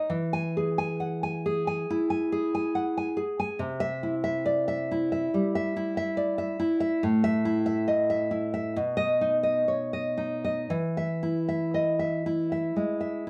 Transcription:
Already playing: D#4 C#5 D#5
0.10 E3
0.33 G#5
0.57 G#4
0.78 G#5
1.00 F#5
1.23 G#5
1.46 G#4
1.67 G#5
1.90 E4
2.10 G#5
2.32 G#4
2.55 G#5
2.75 F#5
2.97 G#5
3.17 G#4
3.40 G#5
3.59 C3
3.80 E5
4.03 E4
4.24 E5
4.46 D5
4.68 E5
4.91 E4
5.12 E5
5.34 G3
5.55 E5
5.76 E4
5.97 E5
6.17 D5
6.38 E5
6.60 E4
6.80 E5
7.03 A2
7.24 E5
7.45 E4
7.66 E5
7.88 D#5
8.10 E5
8.31 E4
8.54 E5
8.76 B2
8.97 D#5
9.21 D#4
9.43 D#5
9.68 C#5
9.93 D#5
10.17 D#4
10.45 D#5
10.70 E3
10.97 E5
11.23 E4
11.49 E5
11.74 D#5
11.99 E5
12.26 E4
12.52 E5
12.76 G#3
13.01 E5

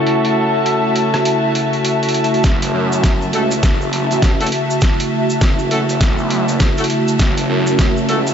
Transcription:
Already playing: C#3 A3 C#4 E4 F#4 A4 E5 A5
0.07 closed hi-hat
0.25 closed hi-hat
0.66 closed hi-hat
0.96 closed hi-hat
1.14 cross-stick, closed hi-hat
1.25 closed hi-hat
1.55 closed hi-hat
1.73 closed hi-hat
1.85 closed hi-hat
2.03 closed hi-hat
2.09 closed hi-hat
2.14 closed hi-hat
2.24 closed hi-hat
2.34 closed hi-hat
2.44 F#1 C#3 A3 E4 F#4, kick, snare, closed hi-hat, cabasa
2.62 closed hi-hat, cabasa
2.74 F#2
2.92 cabasa
3.04 kick, snare, closed hi-hat, cabasa
3.22 cabasa
3.33 C#2 A3 C#4 E4 F#4 A4, closed hi-hat
3.51 closed hi-hat, cabasa
3.63 F#1, kick, snare, closed hi-hat, cabasa
3.81 cabasa
3.93 closed hi-hat
4.11 A1, closed hi-hat, cabasa
4.22 kick, snare, closed hi-hat, cabasa
4.41 A3 C#4 E4 F#4 A4, closed hi-hat, cabasa
4.46 closed hi-hat
4.52 closed hi-hat
4.70 cabasa
4.81 kick, snare, closed hi-hat, cabasa
5.00 closed hi-hat, cabasa
5.30 cabasa
5.41 F#1, kick, snare, closed hi-hat, cabasa
5.59 cabasa
5.71 A3 C#4 E4 F#4 A4, closed hi-hat
5.89 F#1, closed hi-hat, cabasa
6.01 kick, snare, closed hi-hat, cabasa
6.18 B1, cabasa
6.30 closed hi-hat
6.48 F#1, closed hi-hat, cabasa
6.60 kick, snare, closed hi-hat, cabasa
6.77 A3 C#4 E4 F#4 A4, closed hi-hat, cabasa
6.84 closed hi-hat
6.90 closed hi-hat
7.08 cabasa
7.19 F#1, kick, snare, closed hi-hat, cabasa
7.37 closed hi-hat, cabasa
7.49 F#2
7.67 cabasa
7.79 kick, snare, closed hi-hat, cabasa
7.97 cabasa
8.08 C#2 A3 C#4 E4 F#4 A4, closed hi-hat
8.27 closed hi-hat, cabasa

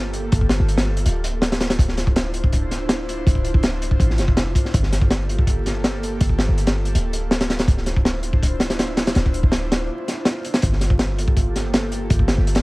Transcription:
Already playing: G1 A#3 F4 G4 A4
0.13 closed hi-hat
0.32 G1, kick, closed hi-hat
0.41 kick
0.49 snare, closed hi-hat
0.60 G1
0.69 closed hi-hat
0.78 snare, closed hi-hat
0.97 closed hi-hat
1.06 D1, closed hi-hat
1.24 closed hi-hat
1.42 snare, closed hi-hat
1.52 snare, closed hi-hat
1.60 snare, closed hi-hat
1.70 snare, closed hi-hat
1.79 D1 D4 E4 C5, kick, closed hi-hat
1.88 snare
1.97 snare, closed hi-hat
2.07 kick
2.16 snare, closed hi-hat
2.34 closed hi-hat
2.44 kick
2.52 kick, closed hi-hat
2.71 snare, closed hi-hat
2.89 snare, closed hi-hat
3.09 closed hi-hat
3.27 D1, kick, closed hi-hat
3.35 kick
3.45 closed hi-hat
3.54 D1, kick
3.63 snare, closed hi-hat
3.82 closed hi-hat
3.91 kick
4.00 A1, kick, closed hi-hat
4.10 snare
4.18 F1, snare, closed hi-hat
4.28 kick
4.37 snare, closed hi-hat
4.55 kick, closed hi-hat
4.65 snare
4.74 G1 A#3 G4 A4, kick, closed hi-hat
4.83 snare
4.93 snare, closed hi-hat
5.01 kick
5.11 snare, closed hi-hat
5.29 closed hi-hat
5.39 kick
5.47 kick, closed hi-hat
5.66 snare, closed hi-hat
5.84 snare, closed hi-hat
6.03 closed hi-hat
6.21 G1, kick, closed hi-hat
6.29 kick
6.39 snare, closed hi-hat
6.49 G1
6.58 closed hi-hat
6.67 snare, closed hi-hat
6.85 closed hi-hat
6.95 D1, closed hi-hat
7.13 closed hi-hat
7.31 snare, closed hi-hat
7.41 snare, closed hi-hat
7.50 snare, closed hi-hat
7.59 snare, closed hi-hat
7.68 D1 D4 E4 F4 C5, kick, closed hi-hat
7.77 snare
7.86 snare, closed hi-hat
7.96 kick
8.05 snare, closed hi-hat
8.23 closed hi-hat
8.33 kick
8.43 kick, closed hi-hat
8.60 snare, closed hi-hat
8.70 snare, closed hi-hat
8.79 snare, closed hi-hat
8.97 snare, closed hi-hat
9.07 snare, closed hi-hat
9.15 D1, snare, closed hi-hat
9.26 kick
9.34 closed hi-hat
9.43 D1, kick
9.52 snare, closed hi-hat
9.72 snare, closed hi-hat
10.08 snare, closed hi-hat
10.25 snare, closed hi-hat
10.45 closed hi-hat
10.54 snare, closed hi-hat
10.62 G1 A#3 G4 A4, kick, closed hi-hat
10.72 snare
10.81 snare, closed hi-hat
10.90 kick
10.99 snare, closed hi-hat
11.18 closed hi-hat
11.28 kick
11.37 kick, closed hi-hat
11.56 snare, closed hi-hat
11.74 snare, closed hi-hat
11.92 closed hi-hat
12.10 G1, kick, closed hi-hat
12.19 kick
12.28 snare, closed hi-hat
12.38 G1
12.47 closed hi-hat
12.55 snare, closed hi-hat

